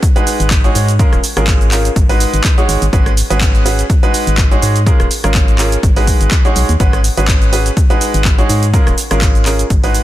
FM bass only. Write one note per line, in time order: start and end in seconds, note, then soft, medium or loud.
0.40 0.69 G#1 medium
0.75 1.05 G#2 loud
1.13 1.19 D#1 medium
1.37 1.89 G#1 medium
1.96 2.26 G#1 medium
2.34 2.40 G#1 medium
2.69 2.77 G#1 medium
2.82 2.89 G#1 loud
2.93 3.22 G#1 loud
3.30 3.83 G#1 medium
4.27 4.56 G#1 medium
4.62 4.92 G#2 loud
5.00 5.07 D#1 medium
5.24 5.77 G#1 medium
5.83 6.13 G#1 medium
6.21 6.27 G#1 medium
6.56 6.64 B1 medium
6.69 6.76 D#2 loud
6.80 7.09 G#1 loud
7.17 7.70 G#1 medium
8.14 8.43 G#1 medium
8.49 8.79 G#2 loud
8.87 8.94 D#1 medium
9.11 9.64 G#1 medium
9.70 10.00 G#1 medium